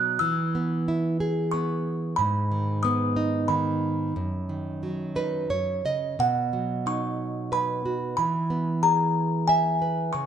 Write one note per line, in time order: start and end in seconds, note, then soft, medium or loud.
0.00 0.18 B2 medium
0.00 0.20 F#3 soft
0.00 0.18 D#4 soft
0.00 0.19 F#4 soft
0.19 2.14 E3 medium
0.19 1.56 E6 loud
0.55 1.52 B3 soft
0.88 1.20 E4 medium
1.20 2.16 G#4 medium
1.51 2.17 B3 medium
1.51 2.20 C#6 medium
2.16 4.12 G#2 medium
2.16 2.85 B5 medium
2.51 3.48 D#3 soft
2.83 4.13 B3 medium
2.83 3.51 D#6 medium
3.16 4.13 D#4 medium
3.48 4.14 D#3 medium
3.48 5.47 B5 medium
4.16 5.47 F#2 medium
4.49 5.48 D#3 soft
4.83 5.49 F#3 soft
5.16 5.50 D#4 soft
5.16 5.48 B4 medium
5.50 5.84 F#2 medium
5.50 5.83 C#5 medium
5.85 6.18 C#3 soft
5.85 6.17 D#5 medium
6.19 8.15 B2 medium
6.19 6.89 F#5 medium
6.53 7.82 F#3 soft
6.86 8.15 D#4 soft
6.86 7.56 C#6 medium
7.52 8.17 B4 soft
7.52 8.16 B5 medium
7.86 8.18 F#4 soft
8.17 10.11 E3 medium
8.17 8.86 B5 medium
8.50 9.78 B3 soft
8.83 10.11 G#4 soft
8.83 9.51 A#5 medium
9.48 10.13 E5 medium
9.48 9.94 G#5 medium
9.82 10.14 B4 medium
10.13 10.26 C#3 medium
10.13 10.26 C#6 medium